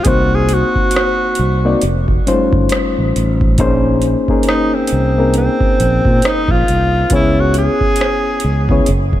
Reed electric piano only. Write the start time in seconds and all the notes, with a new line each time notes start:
0.06 A#3 C4 D#4 F#4 C5
1.65 A#3 C4 D#4 F#4 D5
2.27 G3 C#4 D#4 F4 C5
2.33 A3
3.59 A#3 C#4 D#4 G#4 C5
4.29 A#3 C#4 D#4 G#4 A#4
5.18 A#3 C4 D#4 G#4 A#4
7.12 B3 C#4 E4 G#4 C#5
8.70 B3 C#4 E4 G#4 C#5